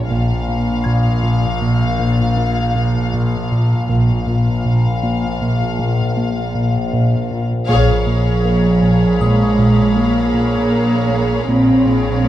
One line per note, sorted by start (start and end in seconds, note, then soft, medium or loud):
0.00 0.44 F6 soft
0.09 0.81 A#1 soft
0.09 3.85 A#1 medium
0.09 3.85 A#2 soft
0.09 0.33 A#2 medium
0.09 3.85 F5 soft
0.48 0.71 A#2 soft
0.84 1.09 A#2 medium
0.84 3.08 G#6 soft
1.23 1.46 A#2 medium
1.61 1.84 A#2 soft
1.99 2.22 A#2 medium
2.37 2.60 A#3 soft
2.75 2.98 A#2 soft
3.14 3.36 A#2 medium
3.52 3.74 A#2 soft
3.89 7.65 A#1 medium
3.89 4.61 A#1 soft
3.89 4.12 A#2 medium
3.89 7.45 A#2 soft
3.89 7.45 F5 soft
4.27 4.50 A#2 soft
4.65 4.88 A#2 soft
5.03 5.26 A#2 medium
5.42 5.64 A#2 soft
5.79 6.02 A#2 medium
6.17 6.40 A#3 soft
6.55 6.78 A#2 soft
6.93 7.16 A#2 medium
7.31 7.54 A#2 soft
7.68 11.45 A#1 medium
7.68 7.92 A#2 medium
7.68 11.45 G#4 soft
7.68 11.45 C#5 medium
7.68 11.44 F5 medium
7.68 12.28 A#5 soft
7.68 12.28 B5 soft
8.07 8.30 A#2 soft
8.07 9.17 F3 soft
8.45 8.68 A#3 soft
8.83 9.05 A#2 soft
9.21 9.44 A#2 medium
9.21 9.97 G#3 soft
9.21 11.45 D#6 soft
9.59 9.81 A#2 soft
9.97 10.20 A#3 soft
9.97 11.49 A#3 medium
10.34 10.57 A#2 medium
10.72 10.95 A#3 soft
11.10 11.33 A#3 soft
11.48 12.28 A#1 soft
11.48 12.28 A#1 medium
11.48 11.71 A#2 medium
11.48 12.28 C4 medium
11.48 12.28 G#4 soft
11.48 12.28 C#5 soft
11.48 12.28 F5 soft
11.86 12.09 A#2 soft
12.24 12.28 A#3 soft